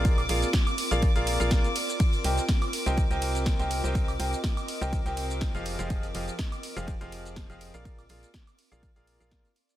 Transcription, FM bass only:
X:1
M:4/4
L:1/16
Q:"Swing 16ths" 1/4=123
K:Fdor
V:1 name="FM bass" clef=bass
B,,,2 B,,, z4 B,,,2 B,,,2 B,,,2 z3 | z2 C,, z4 C,,2 C,,4 C,,2 C,,- | C,,2 C,, z4 C,,2 C,,4 F,,,2 F,,,- | F,,,2 F,,, z4 F,,,2 F,,,4 F,,,2 B,,,- |
B,,,2 B,,, z4 B,,,2 B,,,2 B,,,2 z3 |]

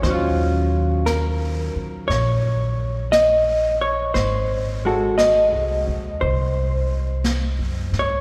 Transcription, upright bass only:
X:1
M:4/4
L:1/8
Q:"Swing" 1/4=58
K:Ebdor
V:1 name="Upright bass" clef=bass
E,,3 z B,,,4 | A,,,2- (3A,,, C,, E,, C,,2- (3C,, G,, A,, |]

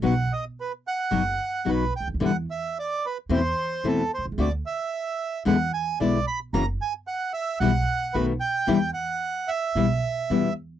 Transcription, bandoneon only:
X:1
M:4/4
L:1/8
Q:1/4=111
K:Em
V:1 name="Bandoneon"
f ^d B f3 B g | f e d B c2 A c | d e3 f ^g d b | ^a ^g f e f2 B =g- |
g f2 e4 z |]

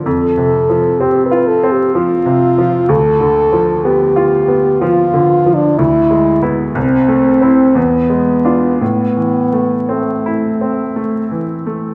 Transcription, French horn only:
X:1
M:3/4
L:1/16
Q:1/4=62
K:Am
V:1 name="French horn"
A4 G B A G F4 | A4 G4 F3 D | E3 z C4 B,4 | B,4 A,6 z2 |]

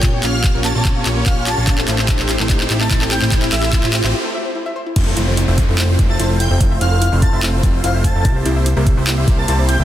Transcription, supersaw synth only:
X:1
M:4/4
L:1/16
Q:1/4=146
K:F
V:1 name="Supersaw synth"
[B,_DFG_d]2 [B,DFGd]2 z [B,DFGd]2 [B,DFGd]3 [B,DFGd]2 [B,DFGd]3 [B,DFGd] | [A,CEGc]2 [A,CEGc]2 z [A,CEGc]2 [A,CEGc]3 [A,CEGc]2 [A,CEGc]3 [A,CEGc] | [A,CEGc]2 [A,CEGc]2 z [A,CEGc]2 [A,CEGc] z8 | [A,CEFc]2 [A,CEFc]2 z [A,CEFc]2 [A,CEFc]3 [A,CEFc]2 [A,CEFc]3 [A,CEFc] |
[A,CEFc]2 [A,CEFc]2 z [A,CEFc]2 [A,CEFc]3 [A,CEFc]2 [A,CEFc]3 [A,CEFc] | [B,CEGc]2 [B,CEGc]2 z [B,CEGc]2 [B,CEGc]3 [B,CEGc]2 [B,CEGc]3 [B,CEGc] |]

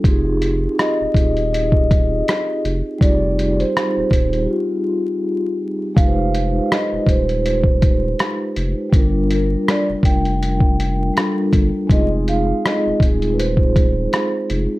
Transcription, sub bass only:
X:1
M:4/4
L:1/16
Q:"Swing 16ths" 1/4=81
K:Fdor
V:1 name="Sub bass" clef=bass
F,,,4 z E,,, E,,,6 z2 F,,, z | F,,,4 z E,,, E,,,2 z8 | F,,,4 z E,,, E,,,6 z2 F,,, z | G,,,4 z F,,, F,,,6 z2 G,,, z |
F,,,4 z E,,, E,,,6 z2 F,,, z |]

